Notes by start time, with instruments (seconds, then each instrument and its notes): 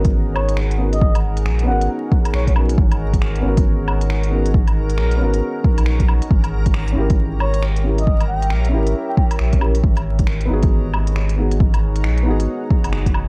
Already playing: sub bass G#1, felt piano B3 C#4 F#4 A#4, ambient pad D#4 G#4 C#5 F#5, synth texture A#4
0.05 kick, closed hi-hat
0.35 muted trumpet C#5, low woodblock
0.49 closed hi-hat
0.57 finger snap
0.71 closed hi-hat
0.77 felt piano B3 C#4 F#4
0.81 felt piano A#4
0.93 muted trumpet D#5, closed hi-hat
1.01 kick
1.15 closed hi-hat, low woodblock
1.37 closed hi-hat
1.46 sub bass A#1, finger snap
1.59 closed hi-hat
1.63 felt piano B3 C#4, muted trumpet F#5
1.67 sub bass G#1, felt piano F#4 A#4
1.81 closed hi-hat
2.12 kick
2.25 closed hi-hat, low woodblock
2.34 sub bass A#1, muted trumpet C#5, finger snap
2.47 muted trumpet C#5, kick, closed hi-hat
2.54 felt piano B3 C#4 F#4, low woodblock
2.58 felt piano A#4
2.69 closed hi-hat
2.78 sub bass G#1, kick
2.92 closed hi-hat, low woodblock
3.14 kick, closed hi-hat
3.22 finger snap
3.36 closed hi-hat
3.40 felt piano B3 C#4
3.44 sub bass G#1, felt piano F#4 A#4
3.57 kick, closed hi-hat
3.88 low woodblock
4.01 closed hi-hat
4.10 finger snap
4.23 closed hi-hat
4.30 felt piano B3 C#4 F#4
4.35 felt piano A#4
4.46 closed hi-hat
4.54 kick
4.67 closed hi-hat, low woodblock
4.90 closed hi-hat
4.98 sub bass A#1, finger snap
5.11 closed hi-hat
5.16 felt piano B3 C#4
5.21 sub bass G#1, felt piano F#4 A#4
5.34 closed hi-hat
5.64 kick
5.78 sub bass A#1, closed hi-hat, low woodblock
5.86 finger snap
6.00 kick, closed hi-hat
6.08 low woodblock
6.22 closed hi-hat
6.30 sub bass G#1, ambient pad G4, kick
6.40 ambient pad A#4
6.44 closed hi-hat, low woodblock
6.66 kick, closed hi-hat
6.74 finger snap
6.88 ambient pad E5, closed hi-hat
6.92 felt piano C#4 E4
6.97 sub bass G#1, felt piano G4 A#4
7.10 kick, closed hi-hat
7.40 muted trumpet C#5, low woodblock
7.54 closed hi-hat
7.63 finger snap
7.76 closed hi-hat
7.83 felt piano C#4 E4 G4 A#4
7.98 muted trumpet D#5, closed hi-hat
8.07 kick
8.20 closed hi-hat, low woodblock
8.28 muted trumpet G5
8.42 closed hi-hat
8.50 sub bass A#1, finger snap
8.65 closed hi-hat
8.69 felt piano C#4 E4
8.73 sub bass G#1, felt piano G4 A#4
8.87 closed hi-hat
9.09 muted trumpet G5
9.17 muted trumpet G5, kick
9.31 closed hi-hat, low woodblock
9.39 sub bass A#1, finger snap
9.53 kick, closed hi-hat
9.59 felt piano C#4 E4 G4, low woodblock
9.63 felt piano A#4
9.75 closed hi-hat
9.84 sub bass G#1, ambient pad D#4, kick
9.95 ambient pad G#4, closed hi-hat, low woodblock
10.19 kick, closed hi-hat
10.26 ambient pad F#5, finger snap
10.41 closed hi-hat
10.45 felt piano B3 D#4
10.50 sub bass G#1, felt piano F#4 G#4
10.63 kick, closed hi-hat
10.94 low woodblock
11.07 closed hi-hat
11.16 finger snap
11.29 closed hi-hat
11.36 felt piano B3 D#4 F#4 G#4
11.51 closed hi-hat
11.60 kick
11.74 closed hi-hat, low woodblock
11.96 closed hi-hat
12.04 sub bass A#1, finger snap
12.18 closed hi-hat
12.23 felt piano B3 D#4
12.27 sub bass G#1, felt piano F#4 G#4
12.40 closed hi-hat
12.70 kick
12.84 sub bass F#1, closed hi-hat, low woodblock
12.93 finger snap
13.06 kick, closed hi-hat
13.14 low woodblock